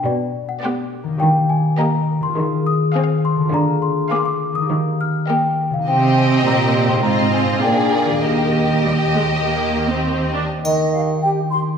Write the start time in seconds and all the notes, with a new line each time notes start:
Already playing: B2 B3 D4 B4
0.05 B2 D5
0.49 F#5
0.63 B3 G4 D5
1.04 D#3
1.08 A#3
1.12 D#4
1.17 D#3 G4 G5
1.49 G#5
1.79 A#3 G4 D#5 A#5
2.20 D#3 C6
2.25 C4
2.29 F4
2.34 D#3 G#4
2.67 D#6
2.95 C4 G#4 F5
3.25 C6
3.36 D3
3.40 A#3
3.45 F4
3.49 D3 G#4
3.54 A#5
3.82 C6
4.11 A#3 G#4 F5 D6
4.19 C6
4.25 D6
4.53 D#3 D#6
4.57 A#3
4.61 D#4
4.66 G4
4.71 D#3
5.01 F6
5.28 A#3 G4 D#5 G5
5.70 C3 F5
5.75 C4
5.79 D#4
5.84 C3 G4 D#5
5.88 C4 G4 G5
6.17 G#5
6.45 A#2 A#5
6.85 G#2
6.89 C4 C6
6.94 D#4
6.99 F4
7.03 G#2 C4 F4 D#5 A#5
7.33 G#5
7.44 A#2
7.49 A#3
7.54 D4
7.58 A#3 G#4 G5
7.62 A#2 G#4 D5
8.05 D#3 F5
8.09 A#3
8.14 D#4
8.18 D#2 A#3 G4
8.22 D#5
8.84 G3
9.14 G#3
9.44 A#3
9.89 C4
10.34 D4
10.64 D#3 D#5, triangle
10.94 G4 F5
11.22 D#4 G4 G5
11.52 G4 C6